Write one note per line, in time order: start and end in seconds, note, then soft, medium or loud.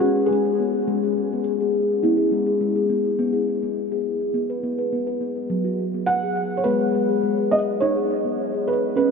0.00 0.15 G#3 medium
0.00 0.60 C#4 medium
0.00 0.29 F#4 medium
0.16 0.30 G#4 medium
0.26 1.40 G#4 medium
0.31 0.45 G#3 medium
0.45 0.59 G#4 medium
0.60 0.88 B3 medium
0.88 1.76 G#3 medium
1.04 1.32 G#4 medium
1.33 1.61 B3 medium
1.60 1.89 G#4 medium
2.03 2.18 B3 medium
2.03 2.92 E4 medium
2.17 2.32 G#4 medium
2.32 2.47 G#3 medium
2.46 2.61 G#4 medium
2.61 2.76 G#3 medium
2.76 2.90 G#4 medium
2.90 3.18 B3 medium
3.19 3.62 B3 medium
3.33 3.62 G#4 medium
3.63 3.92 B3 medium
3.92 4.21 G#4 medium
4.34 4.49 B3 medium
4.50 4.64 B4 medium
4.63 4.78 B3 medium
4.78 4.93 B4 medium
4.93 5.07 B3 medium
5.07 5.21 B4 medium
5.21 5.50 B3 medium
5.50 6.38 F#3 medium
5.64 5.94 F#4 soft
5.94 6.23 B3 soft
6.06 6.60 F#5 medium
6.23 6.52 G#4 medium
6.57 6.65 C#5 soft
6.64 6.94 G#3 medium
6.64 6.80 B3 medium
6.64 7.54 B4 medium
6.80 6.95 G#4 medium
6.95 7.09 G#3 medium
7.09 7.23 G#4 medium
7.23 7.38 G#3 medium
7.38 7.52 G#4 medium
7.51 7.81 B3 medium
7.51 7.58 D#5 medium
7.80 8.70 D#4 medium
7.80 8.70 C#5 medium
7.96 8.25 G#4 medium
8.25 8.54 B3 soft
8.54 8.83 G#4 medium
8.68 8.95 B4 medium
8.96 9.11 C#4 medium
8.96 9.11 B4 medium